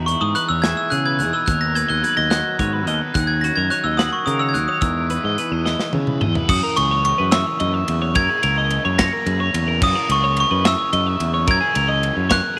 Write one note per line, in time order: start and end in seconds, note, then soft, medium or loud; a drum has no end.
0.00 0.14 E2 medium
0.00 1.48 E2 medium
0.00 1.20 D#4 medium
0.00 0.63 E4 medium
0.06 0.35 E3 medium
0.06 0.35 G#3 medium
0.06 0.35 B3 medium
0.06 0.35 E4 medium
0.06 0.21 E4 medium
0.06 0.22 C#6 medium
0.06 closed hi-hat medium
0.21 0.33 G#2 medium
0.21 0.35 G#4 medium
0.21 0.34 D#6 medium
0.35 0.64 E3 medium
0.35 0.63 G#3 medium
0.35 0.63 B3 medium
0.35 0.62 E4 medium
0.35 0.50 B4 medium
0.35 0.50 F#6 medium
0.35 closed hi-hat medium
0.49 0.73 E2 medium
0.49 0.64 C#5 medium
0.49 0.64 E6 medium
0.62 0.90 E3 medium
0.62 0.90 G#3 medium
0.62 0.91 B3 medium
0.62 0.91 E4 medium
0.62 1.44 G#4 medium
0.62 0.92 E5 medium
0.62 0.77 G#6 medium
0.62 snare loud
0.62 closed hi-hat medium
0.77 0.90 E6 medium
0.90 1.47 B2 medium
0.90 1.21 C#3 medium
0.90 1.19 E3 medium
0.90 1.19 G#3 medium
0.90 1.18 B3 medium
0.90 1.18 E4 medium
0.90 1.06 G#4 medium
0.90 1.05 F#6 medium
0.90 closed hi-hat medium
1.06 1.20 B4 medium
1.06 1.20 G#6 medium
1.19 1.31 E2 medium
1.19 1.47 E3 medium
1.19 1.47 G#3 medium
1.19 1.47 B3 medium
1.19 1.48 D#4 medium
1.19 1.47 E4 medium
1.19 1.34 G#4 medium
1.19 1.34 F#6 medium
1.19 closed hi-hat medium
1.33 1.48 B4 medium
1.33 1.48 E6 medium
1.46 1.82 D#2 medium
1.46 1.74 D#3 medium
1.46 1.73 F#3 medium
1.46 1.73 B3 medium
1.46 1.72 D#4 loud
1.46 1.75 A#4 medium
1.46 1.60 F#6 medium
1.46 kick medium
1.46 closed hi-hat medium
1.61 1.76 A#6 medium
1.74 2.01 D#3 medium
1.74 2.02 F#3 medium
1.74 3.12 A#3 medium
1.74 2.02 B3 medium
1.74 2.03 D#4 medium
1.74 1.88 B4 medium
1.74 1.90 G#6 medium
1.74 closed hi-hat medium
1.88 2.01 D#2 medium
1.88 2.03 D#5 medium
1.88 1.96 F#6 medium
2.02 2.31 D#3 medium
2.02 2.31 F#3 medium
2.02 2.30 B3 medium
2.02 2.30 D#4 medium
2.02 2.17 B4 medium
2.02 2.18 G#6 loud
2.02 closed hi-hat medium
2.17 2.40 D#2 medium
2.17 2.30 D#5 medium
2.17 2.32 A#6 medium
2.30 2.57 D#3 medium
2.30 2.58 F#3 medium
2.30 2.58 B3 medium
2.30 2.58 D#4 medium
2.30 3.12 F#4 medium
2.30 2.59 D#5 medium
2.30 2.90 F#6 loud
2.30 snare loud
2.30 closed hi-hat medium
2.58 2.87 G#2 medium
2.58 2.87 D#3 medium
2.58 2.87 F#3 medium
2.58 2.86 B3 medium
2.58 2.86 D#4 medium
2.58 2.73 C#5 medium
2.58 kick medium
2.58 closed hi-hat medium
2.73 2.87 B4 medium
2.87 2.99 D#2 medium
2.87 3.14 D#3 medium
2.87 3.14 F#3 medium
2.87 3.15 B3 medium
2.87 3.14 D#4 medium
2.87 3.01 D#5 medium
2.87 closed hi-hat medium
3.01 3.16 B4 medium
3.14 3.49 D#2 medium
3.14 3.43 D#3 medium
3.14 3.43 F#3 medium
3.14 3.43 A#3 medium
3.14 3.42 D#4 medium
3.14 3.43 G#4 medium
3.14 3.29 F#6 medium
3.14 kick loud
3.14 closed hi-hat medium
3.27 3.43 G#6 medium
3.41 3.70 D#3 medium
3.41 3.70 F#3 medium
3.41 3.70 A#3 medium
3.41 4.79 C#4 medium
3.41 3.70 D#4 medium
3.41 3.58 F#4 medium
3.41 3.57 A#6 medium
3.41 closed hi-hat medium
3.56 3.68 F#2 medium
3.56 3.71 A#4 medium
3.56 3.71 G#6 medium
3.70 3.98 D#3 medium
3.70 3.98 F#3 medium
3.70 3.97 A#3 medium
3.70 3.97 D#4 medium
3.70 3.85 C#5 medium
3.70 3.84 F#6 medium
3.70 closed hi-hat medium
3.84 4.07 D#2 medium
3.84 3.99 D#5 medium
3.84 3.99 E6 medium
3.97 4.24 D#3 medium
3.97 4.25 F#3 medium
3.97 4.25 A#3 medium
3.97 4.26 D#4 medium
3.97 4.78 F#4 medium
3.97 4.27 F#5 medium
3.97 4.13 D#6 medium
3.97 snare loud
3.97 closed hi-hat medium
4.13 4.27 C#6 medium
4.26 4.56 C#3 loud
4.26 4.53 D#3 medium
4.26 4.53 F#3 medium
4.26 4.52 A#3 medium
4.26 4.52 D#4 medium
4.26 4.41 A#4 medium
4.26 4.39 D#6 medium
4.26 closed hi-hat medium
4.39 4.55 C#5 medium
4.39 4.51 E6 medium
4.49 4.53 G#6 medium
4.53 4.66 D#2 medium
4.53 4.81 D#3 medium
4.53 4.82 F#3 medium
4.53 4.82 A#3 medium
4.53 4.82 D#4 medium
4.53 4.68 A#4 medium
4.53 4.69 F#6 medium
4.53 closed hi-hat medium
4.68 4.83 C#5 medium
4.68 4.74 D#6 medium
4.81 6.20 E2 medium
4.81 5.16 E2 medium
4.81 5.10 E3 medium
4.81 5.10 G#3 medium
4.81 5.09 B3 medium
4.81 6.46 D#4 medium
4.81 5.09 E4 medium
4.81 5.10 A#4 medium
4.81 6.17 E6 medium
4.81 kick medium
4.81 closed hi-hat medium
5.10 5.37 E3 medium
5.10 5.37 G#3 medium
5.10 5.38 B3 medium
5.10 5.38 E4 medium
5.10 5.24 B4 medium
5.10 closed hi-hat medium
5.24 5.35 G#2 medium
5.24 5.38 D#5 medium
5.38 5.65 E3 medium
5.38 5.65 G#3 medium
5.38 5.65 B3 medium
5.38 5.64 E4 medium
5.38 5.52 B4 medium
5.38 closed hi-hat medium
5.52 5.74 E2 medium
5.52 5.64 D#5 medium
5.65 5.92 E3 medium
5.65 5.92 G#3 medium
5.65 5.92 B3 medium
5.65 5.93 E4 medium
5.65 5.93 D#5 medium
5.65 snare medium
5.79 snare medium
5.93 6.23 C#3 medium
5.93 6.21 E3 medium
5.93 6.21 G#3 medium
5.93 6.20 B3 medium
5.93 6.20 E4 medium
5.93 6.08 C#5 medium
5.93 high tom medium
6.07 6.21 B4 medium
6.07 mid tom medium
6.21 6.49 E2 medium
6.21 6.33 E2 medium
6.21 6.49 E3 medium
6.21 6.50 G#3 medium
6.21 6.49 B3 medium
6.21 6.49 E4 medium
6.21 6.35 D#5 medium
6.21 mid tom medium
6.35 6.49 B4 medium
6.35 floor tom medium
6.49 6.60 F#2 loud
6.49 8.15 F#2 loud
6.49 8.14 C#3 medium
6.49 8.16 E3 loud
6.49 8.17 A#3 loud
6.49 8.17 C#4 loud
6.49 6.63 F#4 medium
6.49 6.78 D#6 medium
6.49 kick loud
6.49 crash loud
6.63 6.77 A#4 medium
6.76 7.11 C#2 loud
6.76 6.91 G#4 medium
6.76 7.04 C#6 medium
6.76 ride medium
6.91 7.19 C#5 medium
7.05 7.34 C#6 medium
7.05 ride medium
7.18 7.42 F#2 medium
7.18 7.32 B4 medium
7.31 7.46 E5 medium
7.31 8.18 E6 medium
7.31 snare loud
7.31 ride loud
7.46 7.59 C#5 medium
7.60 7.83 F#2 loud
7.60 7.74 D#5 medium
7.60 ride medium
7.74 8.01 E5 medium
7.88 8.16 E2 medium
7.88 ride medium
8.02 8.16 C#5 medium
8.15 9.82 F#2 loud
8.15 8.27 F#2 loud
8.15 9.80 C#3 loud
8.15 9.82 E3 loud
8.15 9.83 A#3 loud
8.15 9.84 C#4 loud
8.15 8.30 A#4 medium
8.15 9.01 G#6 loud
8.15 kick loud
8.15 ride loud
8.30 8.42 G#4 medium
8.43 8.77 C#2 loud
8.43 8.57 A#4 medium
8.43 ride medium
8.57 8.85 D#5 medium
8.70 ride medium
8.85 9.08 F#2 medium
8.85 8.98 C#5 medium
8.98 9.13 C#5 medium
8.98 9.57 A#6 loud
8.98 kick medium
8.98 snare loud
8.98 ride loud
9.13 9.27 A#4 medium
9.26 9.49 F#2 loud
9.26 9.41 G#4 medium
9.26 ride medium
9.40 9.68 C#5 medium
9.54 9.82 E2 medium
9.54 ride medium
9.68 9.82 A#4 medium
9.82 11.46 F#2 medium
9.82 9.93 F#2 loud
9.82 11.46 C#3 loud
9.82 11.46 E3 loud
9.82 11.48 A#3 loud
9.82 11.47 C#4 loud
9.82 9.96 F#4 medium
9.82 10.11 D#6 loud
9.82 kick loud
9.82 crash loud
9.96 10.09 A#4 medium
10.09 10.43 C#2 loud
10.09 10.23 G#4 medium
10.09 10.24 C#6 medium
10.09 ride medium
10.24 10.51 C#5 medium
10.37 10.65 C#6 loud
10.37 ride medium
10.51 10.74 F#2 medium
10.51 10.65 B4 medium
10.65 10.78 E5 medium
10.65 11.51 E6 medium
10.65 snare loud
10.65 ride loud
10.78 10.92 C#5 medium
10.93 11.15 F#2 loud
10.93 11.07 D#5 medium
10.93 ride medium
11.07 11.33 E5 medium
11.20 11.48 E2 loud
11.20 ride medium
11.34 11.48 C#5 medium
11.47 12.59 F#2 loud
11.47 11.59 F#2 loud
11.47 12.59 C#3 loud
11.47 12.59 E3 loud
11.47 12.59 A#3 loud
11.47 12.59 C#4 loud
11.47 11.60 A#4 medium
11.47 12.35 G#6 loud
11.47 kick loud
11.47 ride loud
11.61 11.75 G#4 medium
11.75 12.09 C#2 loud
11.75 11.89 A#4 medium
11.75 ride medium
11.89 12.16 D#5 medium
12.03 ride medium
12.16 12.39 F#2 medium
12.16 12.28 C#5 medium
12.29 12.43 C#5 medium
12.29 12.59 F#6 loud
12.29 kick medium
12.29 snare loud
12.29 ride loud
12.43 12.58 A#4 medium